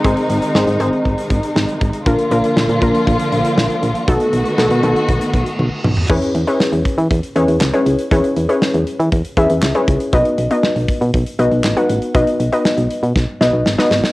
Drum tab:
CC |----------------|----------------|----------------|x---------------|
HH |xxxx-xxxxxxx-xxx|xxxx-xxxxxxx-xxx|xxxx-xxxxxxx----|-xxx-xxxxxxx-xxx|
CP |----------------|----------------|----------------|------------x---|
SD |----o-------o---|----o-------o---|----o-----------|----o-------o---|
T1 |----------------|----------------|------------o---|----------------|
T2 |----------------|----------------|--------------o-|----------------|
FT |----------------|----------------|---------------o|----------------|
BD |o-------o-o---o-|o-----o-o-------|o-------o-o-----|o-----o-o-------|

CC |----------------|----------------|----------------|
HH |xxxx-xxxxxxx-xxx|xxxx-xxxxxxx-xxx|xxxx-xxx--------|
CP |------------x---|------------x---|----------------|
SD |----o-------o---|----o-------o---|----o---o-o-oooo|
T1 |----------------|----------------|----------------|
T2 |----------------|----------------|----------------|
FT |----------------|----------------|----------------|
BD |o-------o-o---o-|o-----o-o-------|o-------o-------|